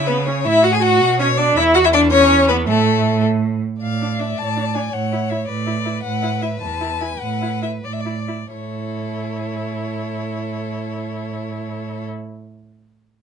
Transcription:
Already playing: cello C#3
0.07 violin B3 B4, viola B3
0.26 violin C#4 C#5, viola C#4
0.45 cello A2, violin E4 E5, viola E4
0.63 violin F#4 F#5, viola F#4
0.72 violin G#4 G#5, viola G#4
0.82 violin F#4 F#5, viola F#4
1.01 cello B2
1.19 viola C#4, violin C#4 C#5
1.37 violin D4 D5, viola D4
1.56 cello E2, violin E4 E5, viola E4
1.74 violin F#4 F#5, viola F#4
1.84 viola E4, violin E4 E5
1.93 viola D4, violin D4 D5
2.11 viola C#4, violin C#4 C#5
2.48 viola B3, violin B3 B4
2.68 cello A2, violin A3 A4, viola A3
3.82 cello A2, violin D5 F5
4.02 viola D4
4.19 viola D4, violin E5
4.37 cello A2, violin A5
4.56 viola D4
4.75 viola D4, violin G#5
4.92 cello A2, violin C#5 F#5
5.12 viola E4
5.30 viola E4, violin E5
5.48 cello A2, violin B4 D5
5.66 viola E4
5.85 viola E4
6.03 cello A2, violin F#5
6.22 viola E4
6.41 viola E4, violin E5
6.61 cello E2, violin A5
6.81 viola E4
7.00 viola E4, violin G#5
7.20 cello A2, violin F#5
7.42 viola E4
7.62 viola E4, violin E5
7.84 cello A2, violin D5
7.92 violin E5
8.00 violin D5
8.05 viola E4
8.28 viola E4
8.52 cello A2, viola E4, violin A4 C#5

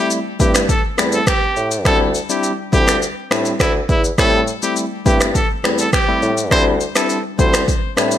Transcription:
Already playing: tine electric piano G3 A3 C4 E4
0.10 shaker
0.40 bassoon G2, tine electric piano G3 A3 C4 E4, trumpet G4, kick, shaker
0.55 finger snap, cross-stick, shaker
0.69 trumpet A4, kick, shaker
0.98 bassoon E2, tine electric piano G3 A3 C4 E4, finger snap, cross-stick, shaker
1.12 trumpet A4, shaker
1.27 trumpet G4, finger snap, kick, cross-stick, shaker
1.56 bassoon A2, shaker
1.71 shaker
1.85 bassoon D2, tine electric piano G3 C4 D4 E4, trumpet A4, finger snap, kick, cross-stick, shaker
2.15 shaker
2.29 tine electric piano G3 C4 D4 E4, trumpet G4, shaker
2.43 shaker
2.72 bassoon D2, tine electric piano G3 C4 D4 E4, trumpet G4, kick, shaker
2.88 finger snap, cross-stick, shaker
3.02 shaker
3.31 bassoon A2, tine electric piano G3 C4 D4 E4, finger snap, cross-stick, shaker
3.45 shaker
3.60 bassoon D2, trumpet E4, finger snap, kick, cross-stick, shaker
3.89 bassoon E2, trumpet E4, kick, shaker
4.04 shaker
4.18 bassoon A2, tine electric piano G3 A3 C4 E4, trumpet A4, finger snap, kick, cross-stick, shaker
4.47 shaker
4.62 tine electric piano G3 A3 C4 E4, trumpet G4, shaker
4.76 shaker
5.06 bassoon G2, tine electric piano G3 A3 C4 E4, trumpet G4, kick, shaker
5.21 finger snap, cross-stick, shaker
5.35 trumpet A4, kick, shaker
5.64 bassoon E2, tine electric piano G3 A3 C4 E4, finger snap, cross-stick, shaker
5.78 trumpet A4, shaker
5.93 trumpet G4, finger snap, kick, cross-stick, shaker
6.08 tine electric piano G3 A3 C4 E4
6.22 bassoon A2, shaker
6.37 shaker
6.51 bassoon D2, tine electric piano G3 C4 D4 E4, trumpet C5, finger snap, kick, cross-stick, shaker
6.81 shaker
6.95 tine electric piano G3 C4 D4 E4, trumpet A4, finger snap, cross-stick, shaker
7.09 shaker
7.38 bassoon D2, tine electric piano G3 C4 D4 E4, trumpet C5, kick, shaker
7.54 finger snap, cross-stick, shaker
7.68 kick, shaker
7.97 bassoon A2, tine electric piano G3 C4 D4 E4, finger snap, cross-stick, shaker
8.11 shaker

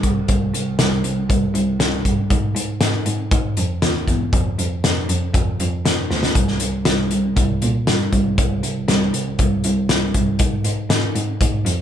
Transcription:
0.03 cello C2, kick, closed hi-hat
0.28 cello C2, kick, closed hi-hat
0.54 cello C2, closed hi-hat
0.79 cello C2, snare, closed hi-hat
1.04 cello C2, closed hi-hat
1.29 cello C2, kick, closed hi-hat
1.54 cello C2, closed hi-hat
1.80 cello C2, snare, closed hi-hat
2.05 cello G2, kick, closed hi-hat
2.30 cello G#2, kick, closed hi-hat
2.55 cello G#2, closed hi-hat
2.81 cello G#2, snare, closed hi-hat
3.06 cello G#2, closed hi-hat
3.31 cello G#2, kick, closed hi-hat
3.57 cello F2, closed hi-hat
3.82 cello D#2, snare, closed hi-hat
4.08 cello E2, kick, closed hi-hat
4.33 cello F2, kick, closed hi-hat
4.58 cello F2, closed hi-hat
4.84 cello F2, snare, closed hi-hat
5.09 cello F2, closed hi-hat
5.34 cello F2, kick, closed hi-hat
5.60 cello F2, closed hi-hat
5.85 cello F2, snare, closed hi-hat
6.10 cello D2, snare
6.23 snare
6.35 cello C2, kick, closed hi-hat
6.48 snare
6.60 cello C2, closed hi-hat
6.85 cello C2, snare, closed hi-hat
7.11 cello C2, closed hi-hat
7.36 cello C2, kick, closed hi-hat
7.62 cello A#2, closed hi-hat
7.87 cello G2, snare, closed hi-hat
8.12 cello C2, kick, closed hi-hat
8.38 cello C2, kick, closed hi-hat
8.63 cello C2, closed hi-hat
8.88 cello C2, snare, closed hi-hat
9.13 cello C2, closed hi-hat
9.39 cello C2, kick, closed hi-hat
9.64 cello C2, closed hi-hat
9.89 cello C2, snare, closed hi-hat
10.14 cello C2, kick, closed hi-hat
10.39 cello G#2, kick, closed hi-hat
10.64 cello G#2, closed hi-hat
10.90 cello G#2, snare, closed hi-hat
11.15 cello G#2, closed hi-hat
11.41 cello G#2, kick, closed hi-hat
11.65 cello F2, closed hi-hat

